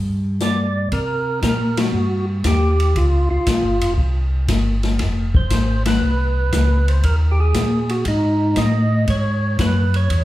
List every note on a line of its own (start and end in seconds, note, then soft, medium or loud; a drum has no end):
0.00 0.88 G2 medium
0.40 0.89 D5 loud
0.40 snare medium
0.40 closed hi-hat soft
0.92 1.41 C3 medium
0.92 1.40 A#4 medium
0.92 kick soft
0.92 ride medium
1.42 1.92 A#2 medium
1.42 1.79 A#4 medium
1.42 kick soft
1.42 snare medium
1.42 hi-hat pedal medium
1.42 ride medium
1.77 2.26 F#4 medium
1.77 snare medium
1.77 ride medium
1.94 2.43 G2 medium
2.44 2.94 D#2 medium
2.44 2.98 G4 loud
2.44 kick soft
2.44 snare medium
2.44 hi-hat pedal medium
2.44 ride medium
2.80 ride soft
2.96 3.28 C#2 medium
2.96 3.29 F4 medium
2.96 kick soft
2.96 ride medium
3.30 3.39 C#2 soft
3.30 3.94 F4 medium
3.46 3.63 A#1 medium
3.46 kick soft
3.46 snare medium
3.46 hi-hat pedal soft
3.46 ride medium
3.63 3.80 G1 soft
3.80 3.96 F1 medium
3.80 ride medium
3.98 4.47 C2 medium
3.98 kick soft
4.48 4.98 G1 medium
4.48 kick soft
4.48 snare medium
4.48 hi-hat pedal soft
4.48 ride medium
4.83 snare medium
4.83 ride soft
4.99 5.49 F1 medium
4.99 kick soft
4.99 snare soft
4.99 ride medium
5.35 5.83 C5 loud
5.35 kick medium
5.50 6.00 G#1 medium
5.50 kick soft
5.50 snare medium
5.50 hi-hat pedal medium
5.50 ride medium
5.85 6.92 B4 medium
5.85 snare medium
5.85 ride medium
6.02 6.51 C2 medium
6.52 7.02 C#2 medium
6.52 kick soft
6.52 snare medium
6.52 hi-hat pedal medium
6.52 ride medium
6.88 7.05 C5 medium
6.88 ride soft
7.03 7.53 D#2 medium
7.03 7.16 A#4 medium
7.03 kick soft
7.03 ride medium
7.31 7.40 G4 medium
7.40 7.92 G#4 medium
7.54 8.04 A#2 medium
7.54 kick soft
7.54 snare medium
7.54 hi-hat pedal medium
7.54 ride medium
7.89 8.05 F#4 medium
7.89 ride soft
8.05 8.55 G#2 medium
8.05 8.60 D#4 medium
8.05 kick soft
8.05 ride medium
8.56 9.06 A2 loud
8.56 9.05 D#5 loud
8.56 kick soft
8.56 snare medium
8.56 hi-hat pedal medium
8.56 ride medium
9.08 9.57 G#2 medium
9.08 9.56 C#5 loud
9.08 kick soft
9.08 ride medium
9.59 10.09 F#2 medium
9.59 9.96 B4 medium
9.59 kick soft
9.59 snare medium
9.59 hi-hat pedal medium
9.59 ride medium
9.94 10.24 C#5 medium
9.94 ride soft
10.10 10.24 E2 medium
10.10 kick soft
10.10 ride medium